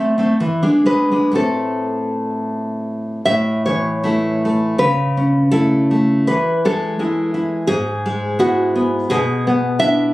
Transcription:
Already playing: A3 C4 E5
0.18 A3 C4
0.40 E3
0.63 G#3 D4
0.86 G#3 B4
1.12 G#3 D4
1.32 A2 A3 C4 A4
3.25 A2 E5
3.66 E3 C#5
4.04 A3 E4
4.45 A3
4.78 C#3 B4
5.17 C#4
5.51 A3 E4 A4
5.91 A3
6.27 E3 B4
6.65 G#3 A4
6.99 G#3 E4
7.34 E4
7.67 G#2 G#4
8.06 G#3
8.39 B3 E4 F#4
8.75 B3
9.10 B2 G#4
9.47 B3
9.79 D4 E4 E5

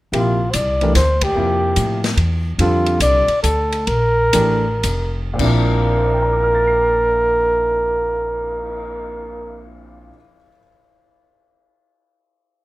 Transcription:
0.12 A#1 C3 F3 A#3 E4 G4, ride
0.18 F4
0.51 C2 C5 D5, hi-hat pedal, ride
0.81 E3 A3 D4 G4 A#4, ride
0.95 D2 C5, snare, hi-hat pedal, ride
1.21 G4, kick, ride
1.35 F2 C3 F3 A#3 E4 G4
1.76 A2, hi-hat pedal, ride
2.04 snare, ride
2.17 E2, ride
2.58 F2 D3 G3 C4 F4 A4, ride
2.86 ride
3.00 C2 D5, hi-hat pedal, ride
3.28 muted upright bass stroke, ride
3.43 D2 A4, hi-hat pedal, ride
3.72 ride
3.87 A#1 A#4, ride
4.33 A1 E3 A3 D4 G4 A#4, hi-hat pedal, ride
4.83 F1, hi-hat pedal, ride
5.34 A#2 F3
5.39 A#1 C4 D4 A#4, kick, crash
5.43 E4 A#4
5.77 cymbal swell
5.97 C5
6.05 E5
6.13 G5
6.22 A#5
6.32 D6
6.43 F6
6.55 A6
6.67 C7

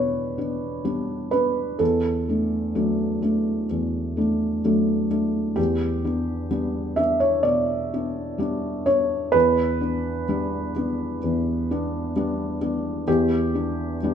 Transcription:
Already playing: B2 G3 B3 D4 B4 C#5 D5
0.38 B3 D4
0.85 G3 B3 D4
1.31 B3 D4 B4
1.79 E2 A4
2.28 A3 D4
2.75 F#3 A3 D4
3.22 A3 D4
3.71 E2
4.17 A3 D4
4.64 F#3 A3 D4
5.11 A3 D4
5.56 E2 G4
6.04 B3 D4
6.51 G3 B3 D4
6.96 B3 D4 E5
7.20 C#5
7.43 B2 D5
7.93 B3 D4
8.38 G3 B3 D4
8.86 B3 D4 C#5
9.32 E2 B4
9.81 B3 D4
10.29 G3 B3 D4
10.76 B3 D4
11.24 E2
11.71 B3 D4
12.16 G3 B3 D4
12.61 B3 D4
13.08 E2 G4
13.55 B3 D4
14.03 G3 B3 D4

